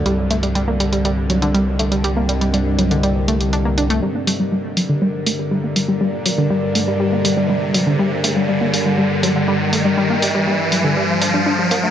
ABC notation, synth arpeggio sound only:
X:1
M:4/4
L:1/16
Q:1/4=121
K:Gm
V:1 name="Synth arpeggio sound" clef=bass
G, z A, G, G, B, G, G, G, z ^F, D, G, z A, G, | G, B, G, G, G, z ^F, D, G, z A, z D B, D A, | G, B, G, G, G, z ^F, D, G, z A, G, G, B, G, G, | G, z ^F, D, G, z A, G, G, B, G, G, G, z F, D, |
G, z A, G, G, B, G, G, G, z ^F, D, G, z A, G, | G, B, G, G, G, z ^F, D, G, z D D D G, B, A, |]